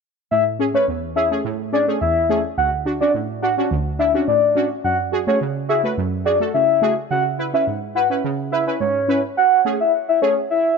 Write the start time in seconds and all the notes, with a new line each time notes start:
0.31 A2 E5
0.59 C#4 G#4
0.74 A3 C#4 B4 C#5
0.88 E2
1.16 C#4 G#4 E5
1.31 A3 C#4 G#4
1.45 A2
1.73 C#4 G#4 D5
1.88 A3 C#4 G#4
2.01 E2 E5
2.29 A3 C#4 G#4
2.58 D2 F#5
2.85 D4 F#4
3.01 C#4 D4 F#4 D5
3.14 A2
3.42 D4 F#4 F#5
3.58 C#4 D4 F#4
3.71 D2
3.99 D4 E4 E5
4.14 C#4 D4 F#4
4.28 A2 D5
4.55 C#4 D4 F#4
4.84 F#2 F#5
5.12 F#4 G#4
5.27 A3 F#4 G#4 C#5
5.41 C#3
5.69 F#4 G#4 E5
5.84 A3 F#4 B4
5.97 F#2
6.25 F#4 G#4 D5
6.40 A3 F#4 A4
6.54 C#3 E5
6.82 A3 F#4 G#4
7.11 C#3 F#5
7.39 E4 B4
7.54 C#4 E4 B4 E5
7.67 G#2
7.95 E4 B4 F#5
8.10 C#4 E4 B4
8.24 C#3
8.52 E4 B4 E5
8.67 C#4 E4 B4
8.80 G#2 C#5
9.08 C#4 E4 B4
9.37 F#5
9.65 A3 C#4 G#4
9.80 E5
10.09 E5
10.22 A3 C#4 G#4 C#5
10.50 E5